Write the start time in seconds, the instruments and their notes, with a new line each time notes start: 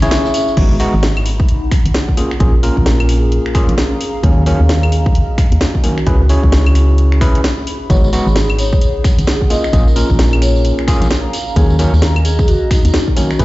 0.02 fm bass G#1, tine electric piano C#4 E4 G#4 C#5, vibraphone E5, closed hi-hat, tambourine
0.11 vibraphone E5, snare, closed hi-hat, tambourine
0.25 vibraphone E5, tambourine
0.34 vibraphone E5, open hi-hat, tambourine
0.48 tambourine
0.57 fm bass G#1, tine electric piano G#3 B3 D#4 F#4, ambient pad D#4, kick, closed hi-hat, crash
0.80 tine electric piano G#3 B3 D#4 F#4, open hi-hat
0.89 ambient pad B5
0.94 fm bass G#1
1.03 snare, closed hi-hat
1.17 closed hi-hat, claves
1.26 ambient pad G#4, open hi-hat
1.40 kick
1.49 closed hi-hat
1.71 finger snap, kick, open hi-hat
1.86 fm bass G#1, closed hi-hat
1.94 snare, closed hi-hat
2.08 kick
2.17 tine electric piano A#3 C#4 F4 G#4, ambient pad C#4, open hi-hat
2.31 finger snap
2.40 fm bass A#1, tine electric piano A#3 C#4 F4 G#4, kick, closed hi-hat
2.63 tine electric piano A#3 C#4 F4 A#4, open hi-hat
2.77 fm bass A#1, kick
2.86 snare, closed hi-hat
3.00 closed hi-hat, claves
3.09 ambient pad F5 A#5, finger snap, open hi-hat
3.32 closed hi-hat
3.46 finger snap
3.55 tine electric piano A#3 C#4 F4 G#4, finger snap, kick, open hi-hat
3.69 fm bass A#1, closed hi-hat
3.78 snare, closed hi-hat
4.01 open hi-hat
4.23 fm bass D#2, tine electric piano D#3 F#3 A#3 C#4, kick, closed hi-hat
4.46 tine electric piano D#3 F#3 A#3 C#4, open hi-hat
4.53 ambient pad D#5
4.60 fm bass D#2
4.69 snare, closed hi-hat
4.83 closed hi-hat, claves
4.92 ambient pad F#4, open hi-hat
5.06 kick
5.15 closed hi-hat
5.38 finger snap, kick, open hi-hat
5.52 fm bass D#2, closed hi-hat
5.61 snare, closed hi-hat
5.75 kick
5.84 tine electric piano D#3 F#3 A#3 C#4, open hi-hat
5.98 finger snap
6.07 fm bass C#2, tine electric piano C#4 E4 G#4 B4, kick, closed hi-hat
6.29 tine electric piano C#4 E4 G#4 C#5, open hi-hat
6.44 fm bass C#2, kick
6.52 snare, closed hi-hat
6.59 ambient pad G#4
6.66 closed hi-hat, claves
6.75 finger snap, open hi-hat
6.91 ambient pad B5
6.98 closed hi-hat
7.12 finger snap
7.21 fm bass B1, tine electric piano C#4 E4 G#4 B4, finger snap, kick, open hi-hat
7.35 closed hi-hat
7.44 snare, closed hi-hat
7.67 open hi-hat
7.90 fm bass G#1, tine electric piano G#3 B3 D#4 F#4, ambient pad D#4, vibraphone C#5, kick, closed hi-hat, tambourine
8.04 tambourine
8.13 tine electric piano G#3 B3 D#4 F#4, open hi-hat, tambourine
8.27 fm bass G#1, tambourine
8.36 snare, closed hi-hat, tambourine
8.50 closed hi-hat, claves
8.59 vibraphone C#5, open hi-hat, tambourine
8.73 vibraphone C#5, kick
8.81 closed hi-hat, tambourine
9.04 finger snap, kick, open hi-hat, tambourine
9.18 fm bass G#1, closed hi-hat, tambourine
9.27 snare, closed hi-hat, tambourine
9.41 kick
9.50 tine electric piano A#3 C#4 F4 G#4, ambient pad C#4, vibraphone D#5, open hi-hat, tambourine
9.64 finger snap, tambourine
9.73 fm bass A#1, tine electric piano A#3 C#4 F4 G#4, vibraphone A#4, kick, closed hi-hat, tambourine
9.87 vibraphone A#4, tambourine
9.96 tine electric piano A#3 C#4 F4 A#4, open hi-hat, tambourine
10.09 fm bass A#1, kick, tambourine
10.19 snare, closed hi-hat, tambourine
10.33 closed hi-hat, claves
10.42 vibraphone C#5, ambient pad F5 A#5, finger snap, open hi-hat, tambourine
10.56 tambourine
10.64 closed hi-hat, tambourine
10.79 finger snap
10.88 tine electric piano A#3 C#4 F4 G#4, finger snap, kick, open hi-hat, tambourine
11.02 fm bass A#1, closed hi-hat, tambourine
11.11 snare, closed hi-hat, tambourine
11.33 open hi-hat, tambourine
11.48 tambourine
11.56 fm bass D#2, tine electric piano D#3 F#3 A#3 C#4, vibraphone G#4, kick, closed hi-hat, tambourine
11.70 tambourine
11.79 tine electric piano D#3 F#3 A#3 C#4, ambient pad D#5, open hi-hat, tambourine
11.93 fm bass D#2, tambourine
12.02 ambient pad F#4, snare, closed hi-hat, tambourine
12.16 closed hi-hat, claves
12.25 vibraphone G#4, open hi-hat, tambourine
12.39 vibraphone G#4, kick, tambourine
12.48 vibraphone F#4, closed hi-hat, tambourine
12.62 vibraphone F#4
12.71 vibraphone D#4, finger snap, kick, open hi-hat, tambourine
12.85 fm bass D#2, vibraphone D#4, closed hi-hat, tambourine
12.94 snare, closed hi-hat, tambourine
13.08 kick
13.17 tine electric piano D#3 F#3 A#3 C#4, open hi-hat, tambourine
13.31 finger snap, tambourine
13.39 fm bass C#2, tine electric piano C#4 E4 G#4 B4, kick, closed hi-hat, tambourine